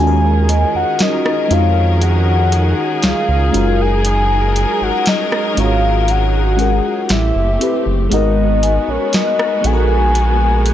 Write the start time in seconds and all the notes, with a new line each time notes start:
Already playing: G#3 C#4 G#5
0.00 D#2 D#3 D#4 F4 F#4 G#4 A4 A#4
0.07 A#4
0.49 D#5, closed hi-hat
0.75 F2 F#5
0.99 D#5, snare, closed hi-hat
1.26 cross-stick
1.48 F2 G#3 C#4 D#4 F#4, closed hi-hat
1.52 C#5 F5
2.02 F#5, closed hi-hat
2.52 closed hi-hat
3.03 C#2 F5, snare, closed hi-hat
3.29 C#2
3.51 F#1 F#3 G#3 C#4 F4 F#4 A#4, closed hi-hat
3.56 A#4
3.81 G#5
4.05 closed hi-hat
4.56 closed hi-hat
4.81 G#1 F#5
5.06 D#5, snare, closed hi-hat
5.32 cross-stick
5.55 G#1 G#3 C#4 F4 F#4, closed hi-hat
5.59 C#5 F5
6.03 F5
6.08 F#5, closed hi-hat
6.56 G#3 C#4 F#4 G#4, closed hi-hat
6.61 A#4
7.09 A1 A3 C4 G4 E5, snare, closed hi-hat
7.35 F#1
7.58 A3 C4 E4 G4, closed hi-hat
7.63 B4
7.86 F#1
8.09 G#1 G#3 B3 D#4 F#4 A#4, closed hi-hat
8.13 A#4 D#5
8.63 G#5, closed hi-hat
8.88 A#1 C#5
9.13 D#5, snare, closed hi-hat
9.39 cross-stick
9.62 A#1 G#3 B3 D#4 F#4 G#5, closed hi-hat
9.66 A4
9.73 A#4
10.15 closed hi-hat
10.66 closed hi-hat